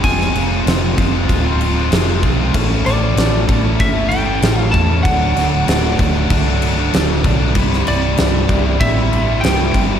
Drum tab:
CC |x-x-x-x-x-x-x-x-|x-x-x-x-x-x-x-x-|x-x-x-x-x-x-x-x-|x-x-x-x-x-x-x-x-|
SD |-o--o-------o---|--o-o-------o---|--o-o-------o---|-o--o-------o---|
BD |o-----o-o-----o-|o-----o-o-----o-|o-----o-o-----o-|o-----o-o-----o-|